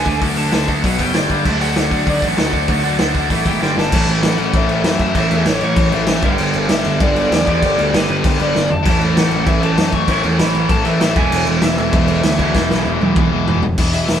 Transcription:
Already playing: G#5
0.05 D2 D3 A3 D4 F#4, kick, open hi-hat
0.21 D2 D3 A3 D4 F#4, kick, open hi-hat
0.36 D3 A3 D4 F#4 A5, open hi-hat
0.52 D2 D3 A3 D4 F#4, snare, open hi-hat
0.68 D2 D3 A3 D4 F#4, kick, open hi-hat
0.84 B1 B2 F#3 B3 F#4 F#5, kick, open hi-hat
0.99 F#1 B2 F#3 B3 F#4 G5, kick, open hi-hat
1.14 G1 G2 D3 G3 D4 G4 D5, snare, open hi-hat
1.30 G1 G2 D3 G3 D4 G4 D5, kick, open hi-hat
1.45 D2 D3 F#3 A3 D4 F#4 D5, kick, crash
1.61 D3 F#3 A3 D4 F#4 D5 F#5, open hi-hat
1.76 D2 D3 F#3 A3 D4 F#4 D5, snare, open hi-hat
1.91 D2 D3 F#3 A3 D4 F#4 D5, kick, open hi-hat
2.07 D2 D3 F#3 A3 D4 F#4 D5, kick, open hi-hat
2.22 A1 D3 F#3 A3 D4 F#4 D5 F#5, kick, open hi-hat
2.37 D2 D3 F#3 A3 D4 F#4 D5, snare, open hi-hat
2.53 D2 D3 F#3 A3 D4 F#4 D5, kick, open hi-hat
2.68 D2 D3 F#3 A3 D4 F#4 D5, kick, open hi-hat
2.83 F#3 A3 D4 F#4 D5, open hi-hat
2.87 D3
2.99 D2 D3 F#3 A3 D4 F#4 D5, snare, open hi-hat
3.14 D2 D3 F#3 A3 D4 F#4 D5, kick, open hi-hat
3.29 A1 A2 E3 A3 E4 A4 E5, kick, open hi-hat
3.46 G#1 A2 E3 A3 E4 A4 E5 G5, kick, open hi-hat
3.61 G1 G2 D3 G3 D4 G4 D5, snare
3.77 G1 G2 D3 G3 D4 G4 D5 A5, snare
3.92 A1 A2 E3 A3 C#4, kick, crash
3.97 E4
4.07 A1, crash
4.23 A1 F#5, snare, crash
4.38 A1, crash
4.53 A1 E5, kick, crash
4.68 E3 A3, crash
4.72 A2
4.83 F#2 A2 E3 A3 E5, snare, crash
4.99 E5, kick, crash
5.15 A1 A2 E3 A3 C#4, kick, crash
5.19 E4
5.31 E2, crash
5.46 A1 C#5, snare, crash
5.61 A1 C#5, crash
5.76 A1, kick, crash
5.91 A1 A2 E3 A3 E5, crash
6.07 A1 A2 E3, snare, crash
6.11 A3
6.21 G1 G2 D3 G3 B3 D4 G5, kick, crash
6.38 G1, crash
6.54 G1, crash
6.69 G1 E5, snare, crash
6.85 G1, crash
7.00 G1 G2 D3 G3 D5, kick, crash
7.15 G2 D3 G3, crash
7.32 E2 D5, snare, crash
7.46 G2 D3 G3 B3 D5, kick, crash
7.50 D4
7.63 G1, kick, crash
7.78 D2, crash
7.94 G1 B4, snare, crash
8.09 G1 B4, crash
8.23 G1 G2 D3 G3, kick, crash
8.39 G1 G2 D3 G3 D5, crash
8.55 G1, snare
8.70 G1 A5, floor tom
8.85 A1 A2 E3 A3 C#4 E4, kick, crash
9.01 A1, crash
9.16 A1 F#5, snare, crash
9.31 A1, crash
9.47 A1 E5, kick, crash
9.61 A2 E3 A3 A5, crash
9.76 F#2 A2 E3 A3, snare, crash
9.93 C#6, kick, crash
10.07 A1 A2 E3 A3 C#4, kick, crash
10.12 E4
10.24 E2, crash
10.39 A1 B5, snare, crash
10.55 A1, crash
10.69 A1 A5, kick, crash
10.83 A1 A2 E3 A3 E5, crash
10.99 A1 A2 E3, snare, crash
11.03 A3
11.14 E1 E2 B2 E3 G#3 B3 G#5, kick, crash
11.19 E4
11.31 E1, crash
11.47 E1, crash
11.62 E1 E5, snare, crash
11.78 E1 E5, crash
11.92 E1 E2 B2 E3, kick, crash
12.07 E2 B2 E3, crash
12.23 D2, snare, crash
12.38 E2 B2 E3 G#3 B3, kick, crash
12.43 E4
12.55 E1, kick, snare
12.70 B1, snare
12.85 E1
13.01 E1, high tom
13.15 E1 E2 B2, kick, mid tom
13.19 E3
13.32 E1 E2 B2 E3
13.48 E1, floor tom
13.63 E1, floor tom
13.78 E1 E2 B2 E3, kick, crash
13.93 E2 B2 E3 E5, open hi-hat
14.08 E1 E2 B2 E3, snare, open hi-hat

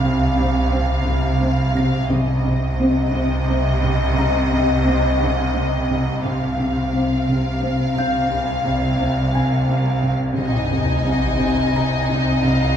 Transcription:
Already playing: C2 C3 A#4 F5 A#5 F6
0.03 C3
0.38 C3
0.73 C4
1.07 C3
1.42 C4
1.76 C3 A#6
2.11 C2 C3 D#5
2.46 C3
2.80 C4
3.15 C3
3.49 C4
3.84 C3
4.18 C3 A#5 A#6
4.53 C3
4.87 C4
5.22 C3
5.56 C4
5.91 C3
6.24 C2 C3 F5
6.59 C3
6.94 C4
7.28 C3
7.63 C4
7.97 C3 F5 G6
8.31 C3
8.66 C3
9.00 C4
9.34 C3 G#5 G#6
9.69 C4
10.03 C3
10.37 C2 C3 D#4 D#5 G#5, sub drop
10.72 C3
11.07 C3
11.41 C3
11.76 C3 A#5 A#6
12.10 C3
12.45 C3 F5

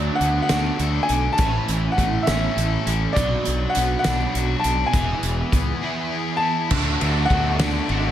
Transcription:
Already playing: D3 F#3 A3 D4 F#4 D5
0.15 F#5
0.21 D2 B3, closed hi-hat
0.42 F#5
0.48 D2 D3 A3 D4 F#4, snare, closed hi-hat
0.79 D2 A4, closed hi-hat
1.03 G#5
1.09 B1 D4, closed hi-hat
1.33 A5
1.38 A1 A2 E3 A3 C#4 E4, kick, closed hi-hat
1.68 A1, closed hi-hat
1.92 F#5
1.98 A1 A3, kick, closed hi-hat
2.23 E4 E5
2.27 A1 A2 E3 A3 C#4, snare, closed hi-hat
2.57 A1 A4, closed hi-hat
2.86 A1 C#4, closed hi-hat
3.13 B2 F#3 B3 D4 D5, kick, closed hi-hat
3.17 B1 F#4
3.45 B1, closed hi-hat
3.70 F#5
3.75 B1 B3, closed hi-hat
3.99 F#5
4.04 B1 B2 F#3 B3 D4 F#4, snare, closed hi-hat
4.34 B1 F#4, closed hi-hat
4.59 A5
4.64 B1 D4, closed hi-hat
4.86 G#5
4.92 E1 E3 B3 E4 G#4, kick, closed hi-hat
5.23 E1, closed hi-hat
5.52 C#2 B3, kick, closed hi-hat
5.82 E3 B3 E4 G#4
6.12 G#4
6.37 A5
6.42 E4
6.71 D2 D3 F#3 A3 D4 F#4 A4, kick, crash
7.01 D2 D3 F#3 A3 D4 F#4 A4, ride
7.25 D3 F#5
7.30 D2 F#3 A3 D4 F#4 A4, kick, ride
7.58 D3 F#3 A3 D4 F#4 A4, snare, ride
7.89 G#1 D3 F#3 A3 D4 F#4 A4, ride

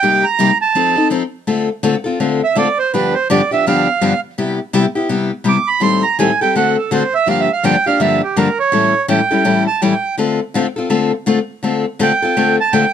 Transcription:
Already playing: G5
0.03 C3 G3 A#3 D#4 G4
0.24 A#5
0.39 C3 G3 A#3 D#4 G4
0.62 A5
0.75 F3 C4 D#4 A4
0.96 C4 D#4 A4
1.10 F3 C4 D#4 A4
1.47 D3 A3 C4 F4 A4
1.83 D3 A3 C4 F4 A4
2.04 C4 F4 A4
2.20 D3 A3 C4 F4 A4
2.44 E5
2.55 D3 A3 C4 F4 A4 D5
2.79 C5
2.93 G2 D3 F3 B3 D4 G4 B4
3.14 C5
3.30 G2 D3 F3 B3 D4 G4 D5
3.51 F3 B3 D4 G4 E5
3.66 G2 D3 F3 B3 D4 G4 F5
4.01 G2 D3 F3 B3 D4 G4
4.38 C3 G3 B3 E4 G4
4.73 C3 G3 B3 E4 G4
4.95 B3 E4 G4
5.09 C3 G3 B3 E4 G4
5.44 C3 G3 B3 E4 G4
5.48 D6
5.68 B5
5.80 A2 D#3 G3 C4 G4 A4 C6
6.03 A#5
6.19 A2 D#3 G3 C4 G4 A4 G#5
6.41 G3 C4 G4 A4 G5
6.55 D3 A3 C4 F#4 A4 F#5
6.78 A4
6.91 D3 A3 C4 F#4 A4 C5
7.15 E5
7.26 G2 D3 F3 A#3 D4 G4 F5
7.40 E5
7.53 F5
7.63 G2 D3 F3 A#3 D4 G4 G5
7.86 F3 A#3 D4 G4 F5
8.00 G2 D3 F3 A#3 D4 G4 E5
8.23 G4
8.36 G2 D3 F3 A#3 D4 G4 A#4
8.59 C#5
8.72 A2 E3 G3 C#4 E4 A4
9.08 A2 E3 G3 C#4 E4 A4 G5
9.31 G3 C#4 E4 A4
9.44 A2 E3 G3 C#4 E4 A4
9.67 A5
9.82 A2 E3 G3 C#4 E4 A4 G5
10.18 D3 A3 C4 F4 A4
10.54 D3 A3 C4 F4 A4
10.76 C4 F4 A4
10.90 D3 A3 C4 F4 A4
11.26 D3 A3 C4 F4 A4
11.63 D3 A3 C4 F4 A4
11.99 D3 A3 C4 F4 A4 G5
12.22 C4 F4 A4
12.37 D3 A3 C4 F4 A4
12.61 A5
12.73 D3 A3 C4 F4 A4 G5

